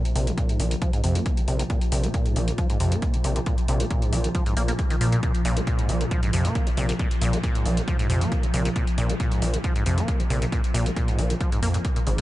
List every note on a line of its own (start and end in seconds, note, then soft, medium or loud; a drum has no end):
0.00 12.21 A#2 medium
0.00 12.21 F3 medium
0.05 closed hi-hat medium
0.15 0.31 A#1 loud
0.15 0.29 C3 medium
0.15 open hi-hat loud
0.27 0.33 A#3 medium
0.27 closed hi-hat medium
0.38 0.51 A#2 medium
0.38 kick loud
0.38 closed hi-hat medium
0.49 0.61 G#2 medium
0.49 closed hi-hat medium
0.60 0.75 A#1 loud
0.60 0.73 F3 medium
0.60 open hi-hat medium
0.71 0.75 C3 medium
0.71 closed hi-hat medium
0.82 0.91 F3 medium
0.82 kick loud
0.82 closed hi-hat medium
0.93 1.02 G#2 medium
0.93 closed hi-hat medium
1.04 1.19 F2 medium
1.04 1.17 C3 medium
1.04 open hi-hat loud
1.15 1.39 A#3 medium
1.15 closed hi-hat medium
1.26 kick loud
1.26 closed hi-hat medium
1.37 1.41 G#2 medium
1.37 closed hi-hat medium
1.48 1.64 A#1 medium
1.48 1.58 C3 medium
1.48 open hi-hat loud
1.59 1.63 C3 medium
1.59 closed hi-hat medium
1.70 1.80 A#2 medium
1.70 kick loud
1.70 closed hi-hat medium
1.81 closed hi-hat medium
1.92 2.08 A#1 loud
1.92 2.05 C3 medium
1.92 open hi-hat loud
2.04 2.09 A#3 medium
2.04 closed hi-hat medium
2.14 2.27 A#2 medium
2.14 kick loud
2.14 closed hi-hat medium
2.26 2.38 G#2 medium
2.26 closed hi-hat medium
2.36 2.52 A#1 loud
2.36 2.49 F3 medium
2.36 open hi-hat medium
2.48 2.51 C3 medium
2.48 closed hi-hat medium
2.58 2.68 F3 medium
2.58 kick loud
2.58 closed hi-hat medium
2.70 2.79 G#2 medium
2.70 closed hi-hat medium
2.80 2.96 F2 medium
2.80 2.93 C3 medium
2.80 open hi-hat loud
2.92 3.15 A#3 medium
2.92 closed hi-hat medium
3.02 kick loud
3.02 closed hi-hat medium
3.14 3.17 G#2 medium
3.14 closed hi-hat medium
3.24 3.40 A#1 medium
3.24 3.34 C3 medium
3.24 open hi-hat loud
3.36 3.40 C3 medium
3.36 closed hi-hat medium
3.46 3.56 A#2 medium
3.46 kick loud
3.46 closed hi-hat medium
3.58 closed hi-hat medium
3.68 3.84 A#1 loud
3.68 3.82 C3 medium
3.68 open hi-hat loud
3.80 3.86 A#3 medium
3.80 closed hi-hat medium
3.90 4.04 A#2 medium
3.90 kick loud
3.90 closed hi-hat medium
4.02 4.14 G#2 medium
4.02 closed hi-hat medium
4.13 4.28 A#1 loud
4.13 4.26 F3 medium
4.13 open hi-hat loud
4.24 4.28 C3 medium
4.24 closed hi-hat medium
4.35 4.44 F3 medium
4.35 kick loud
4.35 closed hi-hat medium
4.46 4.55 G#2 medium
4.46 closed hi-hat medium
4.57 4.72 A#1 medium
4.57 4.63 A#3 medium
4.57 open hi-hat loud
4.68 4.72 A#3 medium
4.68 closed hi-hat medium
4.79 kick loud
4.79 closed hi-hat medium
4.90 4.96 D#3 medium
4.90 closed hi-hat medium
5.01 5.17 A#2 loud
5.01 5.07 F3 medium
5.01 open hi-hat medium
5.12 5.21 A#2 medium
5.12 closed hi-hat medium
5.23 5.33 A#2 medium
5.23 kick loud
5.23 closed hi-hat medium
5.35 closed hi-hat medium
5.45 5.61 A#1 loud
5.45 5.58 A#2 loud
5.45 open hi-hat loud
5.57 5.62 A#3 medium
5.57 closed hi-hat medium
5.67 5.80 A#2 medium
5.67 kick loud
5.67 closed hi-hat medium
5.79 5.91 G#2 medium
5.79 closed hi-hat medium
5.89 6.05 A#1 loud
5.89 6.02 F3 medium
5.89 open hi-hat medium
6.01 6.04 C3 medium
6.01 closed hi-hat medium
6.11 6.21 F3 medium
6.11 kick loud
6.11 closed hi-hat medium
6.23 6.31 G#2 medium
6.23 closed hi-hat medium
6.33 6.49 F2 medium
6.33 6.46 C3 medium
6.33 open hi-hat loud
6.45 6.68 A#3 medium
6.45 closed hi-hat medium
6.55 kick loud
6.55 closed hi-hat medium
6.67 6.70 G#2 medium
6.67 closed hi-hat medium
6.77 6.93 A#1 medium
6.77 6.87 C3 medium
6.77 open hi-hat medium
6.89 6.92 C3 medium
6.89 closed hi-hat medium
6.99 7.09 A#2 medium
6.99 kick loud
6.99 closed hi-hat medium
7.11 closed hi-hat medium
7.21 7.37 A#1 loud
7.21 7.35 A#2 loud
7.21 open hi-hat loud
7.33 7.39 A#3 medium
7.33 closed hi-hat medium
7.43 7.57 A#2 medium
7.43 kick loud
7.43 closed hi-hat medium
7.55 7.67 G#2 medium
7.55 closed hi-hat medium
7.65 7.81 A#1 loud
7.65 7.79 F3 medium
7.65 open hi-hat medium
7.77 7.81 C3 medium
7.77 closed hi-hat medium
7.88 7.97 F3 medium
7.88 kick loud
7.88 closed hi-hat medium
7.99 8.08 G#2 medium
7.99 closed hi-hat medium
8.10 8.25 F2 medium
8.10 8.23 C3 medium
8.10 open hi-hat loud
8.21 8.45 A#3 medium
8.21 closed hi-hat medium
8.32 kick loud
8.32 closed hi-hat medium
8.43 8.47 G#2 medium
8.43 closed hi-hat medium
8.54 8.69 A#1 medium
8.54 8.63 C3 medium
8.54 open hi-hat medium
8.65 8.69 C3 medium
8.65 closed hi-hat medium
8.76 8.85 A#2 medium
8.76 kick loud
8.76 closed hi-hat medium
8.87 closed hi-hat medium
8.98 9.14 A#1 loud
8.98 9.11 A#2 loud
8.98 open hi-hat loud
9.10 9.15 A#3 medium
9.10 closed hi-hat medium
9.20 9.33 A#2 medium
9.20 kick loud
9.20 closed hi-hat medium
9.31 9.43 G#2 medium
9.31 closed hi-hat medium
9.42 9.58 A#1 loud
9.42 9.55 F3 medium
9.42 open hi-hat medium
9.54 9.57 C3 medium
9.54 closed hi-hat medium
9.64 9.74 F3 medium
9.64 kick loud
9.64 closed hi-hat medium
9.76 9.84 G#2 medium
9.76 closed hi-hat medium
9.86 10.02 F2 medium
9.86 9.99 C3 medium
9.86 open hi-hat loud
9.98 10.21 A#3 medium
9.98 closed hi-hat medium
10.08 kick loud
10.08 closed hi-hat medium
10.20 10.23 G#2 medium
10.20 closed hi-hat medium
10.30 10.46 A#1 medium
10.30 10.40 C3 medium
10.30 open hi-hat medium
10.42 10.45 C3 medium
10.42 closed hi-hat medium
10.52 10.62 A#2 medium
10.52 kick loud
10.52 closed hi-hat medium
10.64 closed hi-hat medium
10.74 10.90 A#1 loud
10.74 10.87 A#2 loud
10.74 open hi-hat loud
10.86 10.92 A#3 medium
10.86 closed hi-hat medium
10.96 11.10 A#2 medium
10.96 kick loud
10.96 closed hi-hat medium
11.08 11.20 G#2 medium
11.08 closed hi-hat medium
11.18 11.34 A#1 loud
11.18 11.32 F3 medium
11.18 open hi-hat medium
11.30 11.34 C3 medium
11.30 closed hi-hat medium
11.40 11.50 F3 medium
11.40 kick loud
11.40 closed hi-hat medium
11.52 11.61 G#2 medium
11.52 closed hi-hat medium
11.62 11.78 F2 medium
11.62 11.69 A#3 loud
11.62 open hi-hat loud
11.74 11.78 A#2 medium
11.74 closed hi-hat medium
11.85 kick loud
11.85 closed hi-hat medium
11.96 12.00 A#2 medium
11.96 closed hi-hat medium
12.07 12.21 G#1 medium
12.07 12.11 C#3 medium
12.07 open hi-hat medium